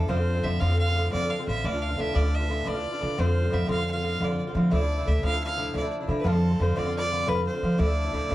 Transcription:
Already playing: A4
0.08 F2 A2 D3 C4 F4 C5
0.16 D3 C4 F4
0.35 D3 C4 F4
0.44 F2 A2 D3 C4 F4 E5
0.60 F2 A2 D3 C4 F4 F5
0.69 D3 C4 F4
0.79 F5
0.88 D3 C4 F4
0.95 A2 D3 C4 F4
1.12 F2 A2 D3 C4 F4 D5
1.22 D3 C4 F4
1.30 F5
1.39 D3 C4 F4
1.47 A1 A2 D3 C4 F4 E5
1.64 D2 A2 E3 D4 F4 D5
1.73 E3 D4 F4
1.82 F5
1.89 E3 D4 F4
1.97 D2 A2 E3 D4 F4 E5
2.13 D2 A2 E3 D4 F4 D5
2.22 E3 D4 F4
2.34 E5
2.39 E3 D4 F4
2.48 A2 E3 D4 F4
2.65 D2 A2 E3 D4 F4 D5
2.74 E3 D4 F4
2.92 E3 D4 F4
2.99 A2 D3 E3 D4 F4
3.18 F2 A2 D3 C4 F4 C5
3.25 D3 C4 F4
3.42 D3 C4 F4
3.50 F2 A2 D3 C4 F4 E5
3.67 F2 A2 D3 C4 F4 F5
3.78 D3 C4 F4
3.91 F4 F5
3.95 D3 C4
4.02 A2 D3 C4 F4
4.20 F2 A2 D3 C4 F4 D5
4.29 D3 C4 F4
4.47 D3 C4 F4
4.55 A2 D3 F3 C4 F4
4.70 D2 A2 F3 D4 E4 D5
4.80 F3 D4 E4
4.98 F3 D4 E4
5.05 D2 A2 F3 D4 E4 E5
5.23 D2 A2 F3 D4 E4 F5
5.32 F3 D4 E4
5.44 F5
5.49 F3 D4 E4
5.57 A2 F3 D4 E4
5.74 D2 A2 F3 D4 E4 D5
5.82 F3 D4 E4
6.00 F3 D4 E4
6.07 A2 D3 F3 D4 E4
6.20 B4
6.24 F2 A2 D3 C4 F4 A4
6.32 D3 C4 F4
6.51 D3 C4 F4
6.59 F2 A2 D3 C4 F4 C5
6.76 F2 A2 D3 C4 F4 D5
6.85 D3 C4 F4
6.96 D5
7.02 D3 C4 F4
7.10 A2 D3 C4 F4
7.26 F2 A2 D3 C4 F4 B4
7.35 D3 C4 F4
7.47 C5
7.54 D3 C4 F4
7.62 A2 D3 F3 C4 F4
7.78 D2 A2 F3 D4 E4 D5
7.86 F3 D4 E4
8.05 F3 D4 E4
8.12 D2 A2 F3 D4 E4
8.29 D2 A2 F3 D4 E4

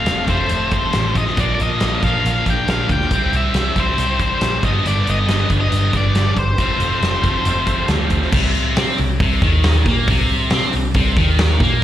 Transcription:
Already playing: F2 C3 F3 A3 C4 F4 A4 F5
0.06 F1, snare, closed hi-hat
0.27 F1 F2 C3 F3 A3 C4 C5, kick, snare, closed hi-hat
0.49 F1, closed hi-hat
0.71 C5, kick, closed hi-hat
0.93 A1, snare, closed hi-hat
1.15 D#5, kick, closed hi-hat
1.27 snare
1.36 A#1 A#2 F3 A#3 B3 D4 D#4 F#4 B4, kick, closed hi-hat
1.40 D5
1.52 D3 A#3 F4 A#4 D5
1.60 A#1 D#5, closed hi-hat
1.80 A#1, snare, closed hi-hat
2.03 A#1 F3 A#3 D4 F5, kick, closed hi-hat
2.07 A#2
2.25 A#1, closed hi-hat
2.46 A#1 G5, kick, closed hi-hat
2.67 A#1 F5, snare, closed hi-hat
2.89 D2 G5, kick, closed hi-hat
3.01 snare
3.11 C2 C3 G3 C4 E4 G4 C5, kick, closed hi-hat
3.33 C2 E5, closed hi-hat
3.54 C2, snare, closed hi-hat
3.76 C2 G3 C4 E4 C5, kick, closed hi-hat
3.80 C3
3.98 C2, closed hi-hat
4.20 C5, kick, closed hi-hat
4.41 A#1, snare, closed hi-hat
4.62 G1 G2 D3 B3 G4 B4 D#5, kick, closed hi-hat
4.66 G3 B3 D4
4.85 G1 D5, closed hi-hat
5.07 G1 D#5, closed hi-hat
5.27 G1 G2 D3 G3 B3 D4, snare, closed hi-hat
5.50 G1, kick, closed hi-hat
5.61 D#5
5.72 G1, closed hi-hat
5.93 G1 D5, kick, closed hi-hat
6.15 G1, snare, closed hi-hat
6.37 G1 C5, kick, closed hi-hat
6.57 F1 F2 C3 F3 C4 F4 A4 C5, kick, closed hi-hat
6.61 A3 C4
6.78 F1, closed hi-hat
7.01 F1, snare, closed hi-hat
7.22 F1 F2 C3 F3 A3 C4, kick, closed hi-hat
7.45 F1, closed hi-hat
7.67 kick, closed hi-hat
7.88 D2, snare, closed hi-hat
8.10 kick, closed hi-hat
8.22 snare
8.32 C2 C3, kick, crash
8.55 open hi-hat
8.76 C3 C4, snare, open hi-hat
8.98 C2 C3, open hi-hat
9.20 C2 C3, kick, open hi-hat
9.42 D#2 D#3, kick, open hi-hat
9.64 snare, open hi-hat
9.86 A#2 A#3, kick, open hi-hat
10.08 C2 C3, kick, open hi-hat
10.29 open hi-hat
10.50 C3 C4, snare, open hi-hat
10.62 snare
10.73 C2 C3, open hi-hat
10.94 C2 C3, kick, open hi-hat
11.17 D#2 D#3, kick, open hi-hat
11.39 snare, open hi-hat
11.60 A#2 A#3, kick, open hi-hat

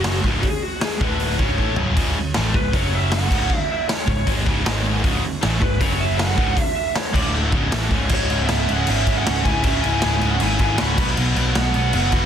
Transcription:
Already playing: F#1 F#2 C#3 F#3 F#4
0.04 snare, open hi-hat
0.24 C#1 C#2 G#2 C#3, kick
0.42 G#4, kick, open hi-hat
0.62 F#4
0.81 G#4, snare, open hi-hat
1.01 D1 D2 A2 D3 B4, kick
1.20 open hi-hat
1.39 C#1 C#2 G#2 C#3 C#5, kick
1.58 A1 A2 E3 A3, kick
1.76 C#1 C#2 G#2 C#3, floor tom
1.96 C#1 C#2 G#2 C#3, kick, open hi-hat, crash
2.17 muted distorted electric guitar stroke, muted picked electric bass stroke
2.34 A1 A2 E3 A3, snare, open hi-hat
2.54 C#1 C#2 G#2 B4, kick
2.73 F#1 F#2 C#3 F#3 C#5, kick, open hi-hat
2.95 E5
3.12 F#5, snare, open hi-hat
3.31 C#1 C#2 G#2 C#3, kick, crash
3.50 kick
3.71 E5
3.89 C#5, snare, open hi-hat
4.08 C#1 C#2 G#2 C#5, kick
4.27 G#1 G#2 D#3 G#3, kick, open hi-hat
4.45 C#1 C#2 G#2 C#3, kick
4.65 G#1 G#2 D#3 G#3, snare, open hi-hat
5.03 C#1 C#2 G#2 C#3, kick, open hi-hat
5.23 muted distorted electric guitar stroke, muted picked electric bass stroke
5.41 A1 A2 E3 A3, snare, open hi-hat
5.62 C#1 C#2 G#2 B4, kick
5.81 F#1 F#2 C#3 F#3 C#5, kick, open hi-hat
6.00 E5
6.18 F#5, snare, open hi-hat
6.37 C#1 C#2 G#2 C#3, kick
6.57 kick, open hi-hat
6.62 E5
6.75 E5
6.95 C#5, snare, open hi-hat
7.13 D1 D2 A2 D3 D5, kick, crash
7.52 C#1 C#2 G#2 C#3, kick
7.72 A1 A2 E3 A3, snare, open hi-hat
7.91 C#1 C#2 G#2 C#3, kick
8.09 C#1 C#2 G#2 C#3, kick, crash
8.14 G#3 C#5
8.30 C#1 C#2 G#2 C#3, crash
8.42 B3 E5
8.48 C#1 C#2 G#2 C#3, snare, crash
8.68 C#1 C#2 G#2 C#3 C#4, crash
8.72 F#5
8.87 G#1 C#2 G#2 C#3 E5, crash
8.91 C#4
9.07 G#1 C#2 G#2 C#3, kick, crash
9.17 C#4 F#5
9.26 C#1 C#2 G#2 C#3, snare, crash
9.44 C#1 C#2 G#2 C#3 E4 G#5, kick, crash
9.63 C#1 C#2 G#2 C#3 C#4 E5, kick, crash
9.81 C#1 C#2 G#2 E4 G#5, crash
9.86 C#3
10.01 C#1 C#2 G#2 C#3 E4 G#5, snare, crash
10.21 C#1 C#2 G#2 C#3, crash
10.31 C#4 F#5
10.40 G#1 C#2 G#2 C#3 E4 G#5, crash
10.59 G#1 C#2 G#2 C#3 E4 G#5, kick, crash
10.78 C#1 C#2 G#2 C#3 F#4 B5, snare, crash
10.98 B1 B2 F#3 B3, kick, crash
11.16 B1 B2 F#3 B3, crash
11.35 B1 B2 F#3 B3, crash
11.55 B1 B2 F#3 B3 F#5, snare, crash
11.74 B1 B2 F#3 B3, crash
11.93 F#1 B2 F#3 B3 F#5, crash
12.12 F#1 B2 F#3 B3 F#4 B5, kick, crash

